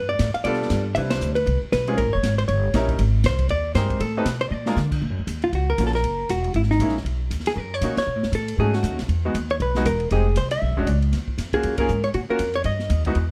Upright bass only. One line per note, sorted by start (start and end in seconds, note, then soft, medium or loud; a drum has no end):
0.00 0.19 G2 medium
0.19 0.33 A2 medium
0.34 muted upright bass stroke soft
0.44 0.69 B2 medium
0.70 0.95 G2 loud
0.96 1.20 C2 medium
1.21 1.46 D2 medium
1.46 1.60 C2 medium
1.62 muted upright bass stroke soft
1.72 1.97 B1 loud
1.97 2.06 A#1 medium
2.06 2.15 G#1 medium
2.15 2.23 F1 medium
2.23 2.48 G#1 medium
2.49 2.73 G1 loud
2.74 2.98 A#1 loud
2.99 3.23 G#1 medium
3.24 3.48 C2 medium
3.49 3.74 D#2 medium
3.75 3.99 G2 loud
4.00 4.25 A2 medium
4.25 4.50 B2 medium
4.51 4.76 A#2 medium
4.76 5.01 D3 medium
5.02 5.10 A#2 medium
5.10 5.18 F#2 medium
5.19 5.26 D#2 medium
5.27 5.52 D#2 medium
5.53 5.77 C#2 medium
5.78 6.03 A#1 loud
6.04 6.28 F#1 medium
6.29 6.54 E1 medium
6.54 6.79 G#1 medium
6.79 7.04 A#1 medium
7.05 7.30 B1 medium
7.30 7.55 D#2 medium
7.56 7.81 F#2 medium
7.81 7.96 A#2 loud
7.97 muted upright bass stroke soft
8.07 8.16 B2 medium
8.16 8.23 A2 medium
8.24 8.31 F#2 medium
8.32 8.57 A2 medium
8.58 8.82 G#2 medium
8.83 8.91 F#2 loud
8.91 8.99 D#2 soft
9.00 9.08 B1 medium
9.08 9.33 E2 medium
9.34 9.59 D#2 medium
9.60 9.84 B1 medium
9.86 10.10 E1 medium
10.11 10.35 F1 medium
10.36 10.61 C2 medium
10.62 10.71 B1 medium
10.70 10.77 G#1 medium
10.78 10.86 E1 medium
10.87 11.11 C#2 loud
11.13 11.37 D#2 medium
11.38 11.62 F2 medium
11.64 11.88 F#2 medium
11.89 12.13 G#2 medium
12.14 12.28 A#2 medium
12.29 muted upright bass stroke soft
12.39 12.64 F2 medium
12.64 12.89 G2 medium
12.90 13.14 D#2 medium
13.15 13.31 E2 medium